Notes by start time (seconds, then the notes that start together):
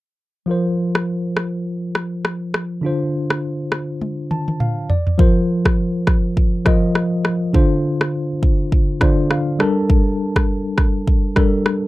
0.46 F3 F4 A#4
0.51 C5
0.95 cross-stick
1.37 cross-stick
1.95 cross-stick
2.25 cross-stick
2.54 cross-stick
2.81 D3 D4 F4
2.86 C5
3.30 cross-stick
3.72 cross-stick
4.01 high tom
4.31 A5, mid tom
4.48 mid tom
4.60 F5, mid tom
4.90 D5, floor tom
5.07 floor tom
5.18 F3 F4 A#4 C5, kick
5.65 kick, cross-stick
6.07 kick, cross-stick
6.37 kick
6.65 F3 F4 A#4 D#5, kick, cross-stick
6.95 cross-stick
7.25 cross-stick
7.53 D3 D4 F4 C5, kick
8.01 cross-stick
8.43 kick
8.72 kick
9.00 D3 D4 F4 C5 D5, kick, cross-stick
9.31 F5, cross-stick
9.59 G3 D4 A4 A#4 A5, cross-stick
9.90 kick
10.36 kick, cross-stick
10.78 kick, cross-stick
11.07 kick
11.35 G3 D4 A4 A#4, kick, cross-stick
11.66 cross-stick